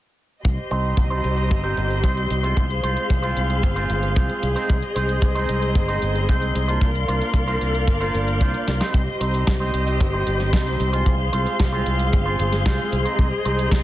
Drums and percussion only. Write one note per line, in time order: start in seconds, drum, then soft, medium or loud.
0.45 kick loud
0.45 closed hi-hat medium
0.58 closed hi-hat soft
0.71 closed hi-hat medium
0.84 closed hi-hat soft
0.97 kick loud
0.97 closed hi-hat medium
1.11 closed hi-hat soft
1.24 closed hi-hat medium
1.37 closed hi-hat soft
1.51 kick loud
1.51 closed hi-hat medium
1.64 closed hi-hat soft
1.77 closed hi-hat medium
1.91 closed hi-hat soft
2.04 kick loud
2.04 closed hi-hat medium
2.17 closed hi-hat soft
2.30 closed hi-hat medium
2.44 closed hi-hat soft
2.57 kick loud
2.57 closed hi-hat medium
2.70 closed hi-hat soft
2.84 closed hi-hat medium
2.97 closed hi-hat soft
3.10 kick loud
3.10 closed hi-hat medium
3.23 closed hi-hat soft
3.37 closed hi-hat medium
3.50 closed hi-hat soft
3.63 kick loud
3.63 closed hi-hat medium
3.76 closed hi-hat soft
3.90 closed hi-hat medium
4.03 closed hi-hat soft
4.16 kick loud
4.16 closed hi-hat medium
4.30 closed hi-hat soft
4.43 closed hi-hat medium
4.56 closed hi-hat soft
4.69 kick loud
4.69 closed hi-hat medium
4.83 closed hi-hat soft
4.96 closed hi-hat medium
5.09 closed hi-hat soft
5.22 kick loud
5.22 closed hi-hat medium
5.36 closed hi-hat soft
5.49 closed hi-hat medium
5.62 closed hi-hat soft
5.75 kick loud
5.75 closed hi-hat medium
5.89 closed hi-hat soft
6.02 closed hi-hat medium
6.15 closed hi-hat soft
6.29 kick loud
6.29 closed hi-hat medium
6.42 closed hi-hat soft
6.55 closed hi-hat medium
6.69 closed hi-hat soft
6.81 kick loud
6.81 closed hi-hat medium
6.95 closed hi-hat soft
7.08 closed hi-hat medium
7.22 closed hi-hat soft
7.34 kick loud
7.34 closed hi-hat medium
7.48 closed hi-hat soft
7.61 closed hi-hat medium
7.75 closed hi-hat soft
7.88 kick loud
7.88 closed hi-hat medium
8.01 closed hi-hat soft
8.15 closed hi-hat medium
8.28 closed hi-hat soft
8.41 kick medium
8.41 closed hi-hat medium
8.54 closed hi-hat soft
8.68 snare medium
8.68 closed hi-hat medium
8.81 snare medium
8.81 closed hi-hat soft
8.94 kick loud
8.94 closed hi-hat medium
9.21 closed hi-hat medium
9.34 closed hi-hat medium
9.47 kick loud
9.47 snare loud
9.47 closed hi-hat medium
9.74 closed hi-hat medium
9.87 closed hi-hat medium
10.00 kick loud
10.00 closed hi-hat medium
10.27 closed hi-hat medium
10.40 snare soft
10.40 closed hi-hat medium
10.53 kick loud
10.53 snare loud
10.53 closed hi-hat medium
10.67 closed hi-hat soft
10.80 closed hi-hat medium
10.93 closed hi-hat medium
11.06 kick loud
11.06 closed hi-hat medium
11.33 closed hi-hat medium
11.46 closed hi-hat medium
11.60 kick loud
11.60 snare loud
11.60 closed hi-hat medium
11.86 closed hi-hat medium
11.99 closed hi-hat medium
12.13 kick loud
12.13 closed hi-hat medium
12.39 closed hi-hat medium
12.53 snare soft
12.53 closed hi-hat medium
12.66 kick loud
12.66 snare loud
12.66 closed hi-hat medium
12.79 closed hi-hat soft
12.92 closed hi-hat medium
13.06 closed hi-hat medium
13.19 kick loud
13.19 closed hi-hat medium
13.45 closed hi-hat medium
13.59 closed hi-hat medium
13.71 kick loud
13.71 snare loud
13.71 closed hi-hat medium